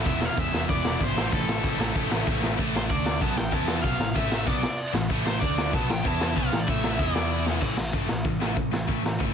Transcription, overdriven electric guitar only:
0.07 0.25 E5 loud
0.25 0.39 F5 loud
0.39 0.70 E5 loud
0.70 1.02 D5 loud
1.04 1.33 C5 loud
1.34 2.24 A4 medium
2.77 2.82 C5 medium
2.91 3.20 D5 medium
3.22 3.38 A5 loud
3.38 3.53 G5 loud
3.53 3.82 A5 loud
3.82 4.16 F5 loud
4.16 4.45 E5 medium
4.47 4.91 D5 medium
5.26 5.40 C5 medium
5.40 5.73 D5 medium
5.74 5.91 A5 loud
5.91 6.06 G5 loud
6.07 6.38 A5 loud
6.38 6.60 F5 loud
6.59 6.67 D5 medium
6.70 7.01 E5 medium
7.02 7.44 D5 medium

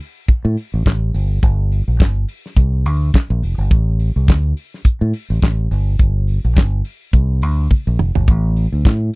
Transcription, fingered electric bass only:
0.29 muted fingered electric bass stroke soft
0.45 0.55 A2 loud
0.74 0.84 A1 medium
0.86 1.10 A1 medium
1.14 1.38 G1 loud
1.43 1.80 G1 loud
1.88 2.00 A#1 medium
2.00 2.24 G1 loud
2.57 2.86 C2 medium
2.86 3.10 D2 loud
3.30 3.41 A#1 loud
3.43 3.56 F1 medium
3.58 3.69 G1 medium
3.71 4.09 A1 loud
4.16 4.28 C2 medium
4.28 4.52 D2 medium
4.85 muted fingered electric bass stroke medium
5.01 5.12 A2 medium
5.30 5.41 A1 medium
5.43 5.67 A1 medium
5.71 5.95 G1 loud
6.00 6.37 G1 loud
6.45 6.57 A#1 medium
6.57 6.81 G1 loud
7.13 7.43 C2 medium
7.43 7.67 D2 loud
7.87 7.98 A#1 loud
8.00 8.13 F1 medium
8.16 8.26 G1 medium
8.28 8.65 A1 loud
8.72 8.83 D2 medium
8.85 9.09 A2 loud

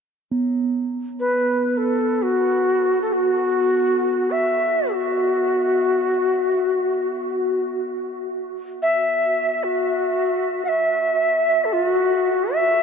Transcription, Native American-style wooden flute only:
1.20 1.68 B4 medium
1.68 1.79 B4 soft
1.77 2.24 A4 medium
2.22 3.01 F#4 medium
3.02 3.14 A4 medium
3.13 4.32 F#4 medium
4.31 4.94 E5 medium
4.92 7.60 F#4 medium
8.82 9.65 E5 medium
9.64 10.64 F#4 medium
10.65 11.66 E5 medium
10.65 10.69 F#5 medium
11.65 11.74 A4 medium
11.73 11.87 F4 medium
11.87 12.56 F#4 medium
12.54 12.83 E5 medium

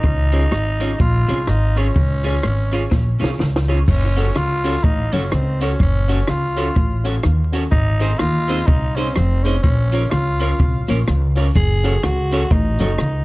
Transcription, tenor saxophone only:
0.00 1.00 D#4 loud
1.01 1.51 F4 loud
1.49 1.79 D#4 medium
1.78 3.69 C#4 loud
3.88 4.39 C#4 loud
4.37 4.86 F4 loud
4.84 5.14 D#4 medium
5.13 5.33 C#4 medium
5.32 5.61 C4 medium
5.62 5.79 C#4 medium
5.82 6.31 C#4 loud
6.30 7.05 F4 medium
7.72 8.21 D#4 loud
8.19 8.69 F4 loud
8.67 8.97 D#4 loud
8.96 9.16 C#4 medium
9.15 9.45 C4 medium
9.44 9.62 C#4 medium
9.63 10.13 C#4 medium
10.11 10.88 F4 medium
11.56 12.06 G#4 loud
12.04 12.53 F#4 medium
12.52 13.25 D#4 medium

